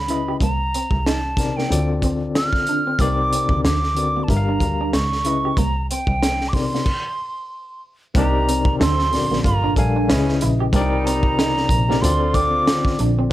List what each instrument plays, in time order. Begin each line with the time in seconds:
Already playing: double bass C#2, flute B5
0.08 tine electric piano C#3 C#4 E4 B4 D#5, clean electric guitar E4, closed hi-hat
0.28 clean electric guitar G4
0.41 double bass C2, clean electric guitar A#3, flute A#5, kick, closed hi-hat
0.74 clean electric guitar C4, closed hi-hat
0.91 double bass C2, kick
1.06 clean electric guitar D#4, flute A5, snare, closed hi-hat
1.37 tine electric piano C3 C4 D#4 A#4 D5, muted clean electric guitar stroke, kick, snare, closed hi-hat
1.57 clean electric guitar A#3, flute G5, snare
1.69 double bass D2, tine electric piano D3 C4 F4 A4 D5, closed hi-hat
2.02 clean electric guitar C4, kick, closed hi-hat
2.35 flute F6, muted clean electric guitar stroke, snare, closed hi-hat
2.53 kick, snare
2.67 clean electric guitar D4, closed hi-hat
2.87 clean electric guitar C4
2.99 double bass C2, tine electric piano C3 C4 D#4 A#4 D5, clean electric guitar A#3, flute D6, kick, closed hi-hat
3.33 clean electric guitar C4, closed hi-hat
3.49 double bass D2, kick
3.65 double bass D2, clean electric guitar D4, flute D6, snare, closed hi-hat
3.83 snare
3.95 tine electric piano D3 C4 F#4 A#4 D5, muted clean electric guitar stroke, closed hi-hat
4.16 clean electric guitar A#3
4.23 tine electric piano G3, flute A5
4.28 double bass G1, tine electric piano D4 G4 A#4 E5, flute A#5, kick, closed hi-hat
4.37 tine electric piano F5
4.49 clean electric guitar D4
4.60 double bass D2, muted clean electric guitar stroke, kick, closed hi-hat
4.81 clean electric guitar D4
4.93 double bass C#2, flute C#6, muted clean electric guitar stroke, snare, closed hi-hat
5.12 snare
5.24 tine electric piano C#3 C#4 E4 B4 D#5, clean electric guitar E4, closed hi-hat
5.45 clean electric guitar G4
5.57 double bass C2, clean electric guitar A#3, flute A#5, kick, closed hi-hat
5.90 clean electric guitar C4, flute G5, closed hi-hat
6.07 double bass C2, kick
6.23 clean electric guitar C4, snare, closed hi-hat
6.41 snare
6.49 flute D6
6.53 tine electric piano C3 C4 D#4 A#4 D5, flute C6, muted clean electric guitar stroke, kick, snare, open hi-hat
6.74 clean electric guitar A#3, snare
6.86 kick, crash
8.15 double bass C2, tine electric piano C3 C4 D#4 A#4 D5, horn section D#3 D4 G4, clean electric guitar A#3, flute A#5, kick, closed hi-hat
8.49 clean electric guitar C4, closed hi-hat
8.65 kick
8.79 double bass D2, horn section F#3 C4 A4, clean electric guitar D4, flute C6, snare, closed hi-hat
8.99 snare
9.11 double bass A#1, tine electric piano D3 C4 F#4 A#4 D5, muted clean electric guitar stroke, snare, open hi-hat
9.31 double bass A#1, clean electric guitar A#3, snare
9.44 double bass G1, horn section D3 A#3 F4, flute A#5, kick, closed hi-hat
9.63 double bass A#1, clean electric guitar D4
9.76 double bass A#1, tine electric piano G3 D4 A4 A#4 F5, flute G#5, muted clean electric guitar stroke, kick, closed hi-hat
9.96 clean electric guitar D4
10.08 double bass C#2, horn section G#2 E3 C#4, tine electric piano C#3 C#4 E4 B4 D#5, muted clean electric guitar stroke, snare, closed hi-hat
10.29 snare
10.41 double bass A#1, clean electric guitar E4, closed hi-hat
10.60 clean electric guitar G4
10.73 double bass C2, horn section A#2 G3 D#4, tine electric piano C3 C4 D4 A#4 D5, clean electric guitar A#3, flute G5, kick, closed hi-hat
10.81 tine electric piano D#4
11.06 clean electric guitar C4, flute A#5, closed hi-hat
11.23 kick
11.39 clean electric guitar D#4, snare, closed hi-hat
11.57 snare
11.69 double bass A#1, muted clean electric guitar stroke, kick, closed hi-hat
11.88 tine electric piano C3 C4 D#4 A#4 D5, clean electric guitar A#3, snare
12.01 double bass D2, horn section D3 C4 F4, tine electric piano D3 C4 F4 A4 D5, flute C6, closed hi-hat
12.34 clean electric guitar C4, flute D6, kick, closed hi-hat
12.67 muted clean electric guitar stroke, snare, closed hi-hat
12.85 kick, snare
12.99 double bass A#1, clean electric guitar D4, closed hi-hat
13.19 clean electric guitar C4